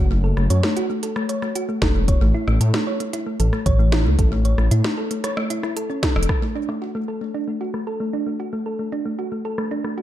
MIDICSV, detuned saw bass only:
0, 0, Header, 1, 2, 480
1, 0, Start_track
1, 0, Tempo, 526316
1, 98, Time_signature, 4, 2, 24, 8
1, 9138, End_track
2, 0, Start_track
2, 0, Title_t, "Detuned saw bass"
2, 0, Program_c, 0, 39
2, 0, Note_on_c, 0, 30, 98
2, 301, Note_off_c, 0, 30, 0
2, 338, Note_on_c, 0, 30, 91
2, 435, Note_off_c, 0, 30, 0
2, 458, Note_on_c, 0, 42, 88
2, 555, Note_off_c, 0, 42, 0
2, 1658, Note_on_c, 0, 30, 89
2, 1755, Note_off_c, 0, 30, 0
2, 1778, Note_on_c, 0, 28, 88
2, 1971, Note_off_c, 0, 28, 0
2, 2018, Note_on_c, 0, 33, 101
2, 2115, Note_off_c, 0, 33, 0
2, 2258, Note_on_c, 0, 33, 90
2, 2355, Note_off_c, 0, 33, 0
2, 2378, Note_on_c, 0, 45, 88
2, 2475, Note_off_c, 0, 45, 0
2, 3098, Note_on_c, 0, 33, 104
2, 3195, Note_off_c, 0, 33, 0
2, 3338, Note_on_c, 0, 33, 96
2, 3698, Note_on_c, 0, 37, 78
2, 3712, Note_off_c, 0, 33, 0
2, 3795, Note_off_c, 0, 37, 0
2, 3818, Note_on_c, 0, 33, 101
2, 4141, Note_off_c, 0, 33, 0
2, 4178, Note_on_c, 0, 33, 91
2, 4275, Note_off_c, 0, 33, 0
2, 4298, Note_on_c, 0, 45, 89
2, 4395, Note_off_c, 0, 45, 0
2, 5618, Note_on_c, 0, 28, 85
2, 5715, Note_off_c, 0, 28, 0
2, 9138, End_track
0, 0, End_of_file